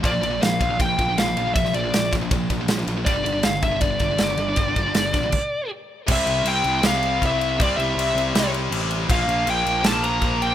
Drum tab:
CC |----------------|----------------|----------------|--------x-------|
RD |x-x-x-x-x-x-x-x-|x-x-x-x-x-x-x-x-|x-x-x-x-x-x-x-x-|x-x-x-x---------|
SD |----o-------o---|-o--o-o-----o---|----o-------o---|----o-o---------|
BD |o-----o-o-o-----|o-----o-o-o-----|o-----o-o-o-----|o-o---o-o-------|

CC |x-x-x-x-x-x-x-x-|x-x-x-x-x-x-x-x-|x-x-x-x-x-x-x-x-|
RD |----------------|----------------|----------------|
SD |--------o-------|--------o-------|--------o-------|
BD |o-----------o---|o---------------|o-----------o---|